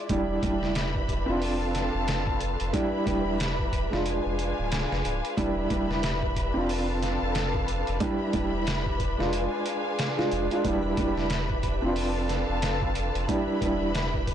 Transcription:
Already playing: D5
0.09 E1 G3 D4 E4 G4 B4 E5 B5, kick, closed hi-hat
0.43 E1 G3 D4 E4, kick, closed hi-hat
0.63 snare
0.75 snare, closed hi-hat
0.95 kick
1.09 kick, closed hi-hat
1.26 F1 C4 D4 F4
1.41 A4 F5 A5, open hi-hat
1.75 snare, closed hi-hat
1.95 F1
2.08 snare, closed hi-hat
2.27 kick
2.40 closed hi-hat
2.60 F1, closed hi-hat
2.73 G3 D4 E4 G4 E5 B5, kick, closed hi-hat
3.06 E1 G3 D4 E4, kick, closed hi-hat
3.40 snare, closed hi-hat
3.59 kick
3.73 kick, closed hi-hat
3.90 F1 G#3 D4 F4, snare
4.05 D4 G#4 F5 G#5, closed hi-hat
4.26 F1
4.39 closed hi-hat
4.59 D1
4.72 snare, closed hi-hat
4.92 F1, snare
5.05 D1, closed hi-hat
5.25 closed hi-hat
5.37 E1 G3 D4 E4 G4 E5 B5, kick, closed hi-hat
5.70 E1 G3 D4 E4, kick, closed hi-hat
5.91 snare
6.03 snare, closed hi-hat
6.23 kick
6.36 kick, closed hi-hat
6.54 F1 C4 D4 F4
6.69 A4 F5 A5, open hi-hat
7.03 snare, closed hi-hat
7.22 F1
7.35 snare, closed hi-hat
7.55 kick
7.68 closed hi-hat
7.87 F1, closed hi-hat
8.00 G3 D4 E4 G4 E5 B5, kick, closed hi-hat
8.33 E1 G3 D4 E4, kick, closed hi-hat
8.67 snare, closed hi-hat
8.86 kick
9.00 kick, closed hi-hat
9.18 F1 G#3 D4 F4, snare
9.32 G#4 F5 G#5, closed hi-hat
9.66 closed hi-hat
9.99 snare, closed hi-hat
10.17 G#3 D4 F4, snare
10.32 F1, closed hi-hat
10.51 G#3 D4 F4, closed hi-hat
10.64 E1 G3 D4 E4 G4 E5 B5, kick, closed hi-hat
10.97 E1 G3 D4 E4, kick, closed hi-hat
11.18 snare
11.30 snare, closed hi-hat
11.50 kick
11.63 kick, closed hi-hat
11.82 F1 C4 D4 F4
11.96 A4 F5 A5, open hi-hat
12.29 snare, closed hi-hat
12.50 F1
12.62 snare, closed hi-hat
12.82 kick
12.95 closed hi-hat
13.15 F1, closed hi-hat
13.28 G3 D4 E4 G4 E5 B5, kick, closed hi-hat
13.61 E1 G3 D4 E4, kick, closed hi-hat
13.95 snare, closed hi-hat
14.14 kick
14.27 kick, closed hi-hat

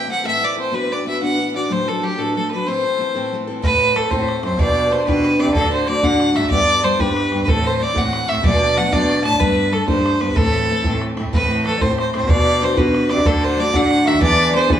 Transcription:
Already playing: A2 E3
0.08 A3 C4 E4 A4 F#5
0.24 A2 A3 C4 E4 A4 E5
0.41 A3 C4 E4 A4 D5
0.56 C4 E4 A4 C5
0.72 B3 D4 F#4 B4
0.89 D4 F#4 B4 D5
1.05 B3 D4 F#4 B4 E5
1.21 B3 D4 F#4 B4 F#5
1.38 B3 D4 F#4 B4
1.54 D4 F#4 B4 D5
1.69 D2 A2 F#3 A3 D4 A4 C5
1.86 F#3 A3 D4 A4
2.02 F#3 A3 D4 G4 A4
2.18 D2 A2 F#3 A3 D4 A4
2.35 F#3 A3 D4 A4
2.51 F#3 A3 D4 A4 B4
2.66 A2 A3 C4 E4 A4 C5
2.83 C4 E4 A4
2.98 A3 C4 E4 A4
3.15 A2 A3 C4 E4 A4
3.32 A3 C4 E4 A4
3.47 C4 E4 A4
3.62 A2 A3 B3 E4 A4 B4 D5, bodhran
3.72 bodhran
3.81 bodhran
3.95 A3 C4 E4 A4, bodhran
4.10 A2 A3 C4 E4 A4 C5, bodhran
4.29 bodhran
4.43 F#2 C4 E4 A4 C5, bodhran
4.52 bodhran
4.59 B2 B3 D4 G4 B4 D5 E5, bodhran
4.63 D5
4.68 bodhran
4.91 B3 D4 G4 B4 C5, bodhran
5.07 B2 B3 D4 G4 B4, bodhran
5.24 C4, bodhran
5.39 C3 D4 G4 B4 D5, bodhran
5.48 bodhran
5.54 D2 A2 D3 A3 D4 F#4 A4, bodhran
5.64 bodhran
5.71 C4 C5
5.86 D3 A3 D4 F#4 D5, bodhran
6.02 D2 A2 D3 A3 D4 F#4 F#5 A5, bodhran
6.07 F#5
6.20 bodhran
6.34 G#2 D3 A3 D4 E4 F#4 E5, bodhran
6.44 bodhran
6.50 G2 G3 B3 D4 G4 D5, bodhran
6.60 bodhran
6.83 G3 B3 D4 G4 C5, bodhran
6.99 G2 G3 B3 D4 G4 B4, bodhran
7.17 bodhran
7.31 G2 B3 D4 G4, bodhran
7.40 B4, bodhran
7.47 A2 E3 A3 C4 E4 A4, bodhran
7.63 C4 C5
7.80 E3 A3 C4 E4 D5
7.94 A2 E3 A3 C4 E4 F#5, bodhran
8.13 bodhran
8.28 A2 A3 C4 E4 E5, bodhran
8.36 bodhran
8.43 B2 F#3 A3 B3 D4 D5, bodhran
8.53 bodhran
8.76 F#3 A3 B3 D4 F#4 F#5, bodhran
8.92 B2 F#3 A3 B3 D4 D5 E5, bodhran
8.96 D5
9.10 bodhran
9.24 A2 A3 B3 D4 A5, bodhran
9.33 bodhran
9.39 G2 G3 A3 B3 D4 B4, bodhran
9.49 bodhran
9.58 bodhran
9.71 G3 A3 B3 D4 A4, bodhran
9.88 G2 G3 A3 C4 D4 C5, bodhran
10.06 bodhran
10.19 G2 B3 D4 B4, bodhran
10.23 A3
10.29 G4, bodhran
10.35 A2 E3 A3 C4 E4 A4, bodhran
10.45 bodhran
10.68 E3 A3 C4 E4
10.84 A2 E3 A3 C4 E4, bodhran
11.02 bodhran
11.17 A2 A3 C4 E4, bodhran
11.25 bodhran
11.32 A2 E3 A3 B3 C4 E4 B4, bodhran
11.42 bodhran
11.51 B3
11.65 E3 A3 C4 E4 A4, bodhran
11.77 A2 A3 E4 C5 D5, bodhran
11.82 A2 E3 C4
11.97 C4 C5, bodhran
12.13 A2 A3 C4 E4 C5, bodhran
12.22 bodhran
12.28 B2 B3 D4 F#4 B4 D5, bodhran
12.38 bodhran
12.61 B3 C4 D4 F#4 B4 C5, bodhran
12.76 B2 B3 D4 F#4 B4, bodhran
12.94 C4, bodhran
13.09 C3 D4 F#4 B4 D5, bodhran
13.18 bodhran
13.25 D2 A2 D3 A3 D4 F#4 A4, bodhran
13.34 bodhran
13.41 C4 C5
13.57 D3 A3 D4 F#4 D5, bodhran
13.72 D2 A2 D3 A3 D4 F#4 F#5, bodhran
13.91 bodhran
14.05 D3 D#3 A3 D4 E4 F#4 E5, bodhran
14.14 bodhran
14.20 D3 E3 B3 D4 G#4 D5, bodhran
14.30 bodhran
14.53 D3 B3 C4 D4 G#4 C5
14.68 D3 E3 B3 D4 G#4 B4, bodhran
14.72 B4

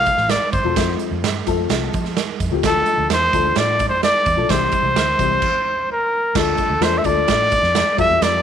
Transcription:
Already playing: F3 A3 C4 A4 F5
0.06 kick, closed hi-hat
0.17 A1, snare
0.29 D5, snare, closed hi-hat
0.53 G1 C5, kick, closed hi-hat
0.64 E1 F3 A3 C4 A4
0.76 F2 F3 A3 C4 C5, kick, snare, closed hi-hat
0.99 closed hi-hat
1.11 F2
1.23 G2, snare, closed hi-hat
1.46 F2 F3 A3 C4 A4, kick, closed hi-hat
1.69 C2, snare, closed hi-hat
1.94 F3, kick, closed hi-hat
2.05 snare
2.17 snare, closed hi-hat
2.40 F2, kick, closed hi-hat
2.51 C#2 F3 A3 C4 G4
2.63 D2 E3 A3 D4 A4, kick, snare, closed hi-hat
2.69 F3
2.86 closed hi-hat
2.98 D2
3.10 E2 C5, snare, closed hi-hat
3.33 D2 F3 A3 D4 A4, kick, closed hi-hat
3.56 A2 D5, snare, closed hi-hat
3.79 kick, closed hi-hat
3.89 F2 C5
4.03 D5, snare, closed hi-hat
4.26 E2, kick, closed hi-hat
4.36 B1 F3 A3 D4 A4
4.48 C2 E3 G3 C4 G4 C5, kick, snare, closed hi-hat
4.72 kick, closed hi-hat
4.83 C2
4.95 D2, snare, closed hi-hat
5.18 C2 E3 G3 C4 G4, kick, closed hi-hat
5.42 kick, crash
5.92 A#4
6.35 D2 F3 A3 D4 A4, kick, snare, crash
6.58 kick, closed hi-hat
6.70 D2
6.80 E2 F3 A3 D4 A4 C5, snare, closed hi-hat
6.98 E5
7.04 D2 F3 A3 D4 A4 D5, kick, closed hi-hat
7.28 A2, kick, snare, closed hi-hat
7.51 kick, closed hi-hat
7.63 F2, snare
7.75 snare, closed hi-hat
7.97 F2 G3 C4 F4 A4 E5, kick, closed hi-hat
8.10 E2
8.21 F2 D5, snare, closed hi-hat

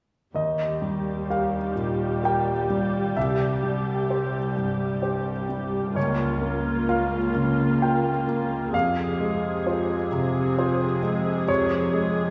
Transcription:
0.34 D#2 G3 G4 D#5
0.82 G3
1.30 G4 A#4 F5
1.76 A#2
2.23 G4 A#4 G5
2.70 G3
3.16 C2 E5
3.63 G3
4.10 G4 C5
4.57 G2
5.02 G4 C5
5.49 G3
5.95 C#2 A#3 F4 C#5
6.41 A#3
6.88 F4 A#4 F5
7.35 C#3
7.82 F4 A#4 G5
8.28 A#3
8.73 F2 C3 G#4 F5
9.20 G#3
9.66 F4 C5
10.12 C3
10.58 F4 C5
11.03 G#3
11.48 F2 C#5
11.94 G#3

